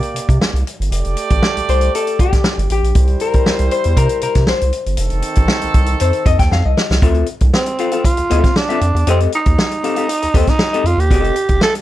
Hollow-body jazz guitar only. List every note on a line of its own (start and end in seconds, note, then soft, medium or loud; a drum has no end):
0.00 0.61 A#4 medium
1.70 1.95 C5 loud
1.95 2.18 A4 loud
2.21 2.71 G4 medium
2.72 3.23 G4 medium
3.21 3.68 A#4 loud
3.72 3.96 C5 loud
3.98 4.22 A#4 loud
4.23 4.48 A#4 loud
4.49 5.72 C5 medium
6.01 6.27 C5 loud
6.26 6.39 D#5 medium
6.39 6.52 G5 loud
6.53 6.65 F5 loud
6.65 7.03 D#5 loud
7.03 7.26 C4 medium
7.03 7.26 F4 loud
7.03 7.27 A4 medium
7.03 7.26 E5 loud
7.42 muted hollow-body jazz guitar stroke soft
7.53 muted hollow-body jazz guitar stroke soft
7.67 muted hollow-body jazz guitar stroke soft
7.79 7.93 C4 medium
7.79 7.92 F4 medium
7.79 7.92 A4 medium
7.79 7.91 F5 medium
7.92 8.03 C4 medium
7.92 8.03 F4 medium
7.92 8.04 A4 medium
7.92 8.05 F5 medium
8.04 muted hollow-body jazz guitar stroke soft
8.18 muted hollow-body jazz guitar stroke soft
8.30 8.50 C4 medium
8.30 8.43 F4 medium
8.30 8.44 A4 medium
8.30 8.43 E5 medium
8.44 muted hollow-body jazz guitar stroke soft
8.56 muted hollow-body jazz guitar stroke soft
8.69 8.80 C4 medium
8.69 8.80 F4 medium
8.69 8.81 A4 medium
8.69 8.81 E5 medium
8.81 muted hollow-body jazz guitar stroke soft
8.95 muted hollow-body jazz guitar stroke soft
9.07 9.30 C4 medium
9.07 9.31 G4 medium
9.07 9.31 A4 medium
9.07 9.31 D#5 loud
9.46 muted hollow-body jazz guitar stroke soft
9.59 muted hollow-body jazz guitar stroke soft
9.72 muted hollow-body jazz guitar stroke medium
9.83 9.97 C4 medium
9.83 9.97 G4 medium
9.83 9.96 A4 medium
9.83 9.96 F5 medium
9.97 10.07 C4 soft
9.97 10.07 G4 medium
9.97 10.08 A4 medium
9.97 10.09 F5 medium
10.08 muted hollow-body jazz guitar stroke soft
10.23 muted hollow-body jazz guitar stroke soft
10.34 10.52 C4 medium
10.34 10.47 G4 medium
10.34 10.47 A4 loud
10.34 10.47 D#5 loud
10.48 muted hollow-body jazz guitar stroke soft
10.60 muted hollow-body jazz guitar stroke soft
10.73 10.85 C4 medium
10.73 10.85 G4 medium
10.73 10.85 A4 medium
10.73 10.85 D#5 medium
10.99 muted hollow-body jazz guitar stroke soft
11.11 11.34 C4 medium
11.11 11.34 G4 medium
11.11 11.34 A4 medium
11.11 11.34 D#5 medium
11.49 muted hollow-body jazz guitar stroke soft
11.61 muted hollow-body jazz guitar stroke medium
11.75 muted hollow-body jazz guitar stroke soft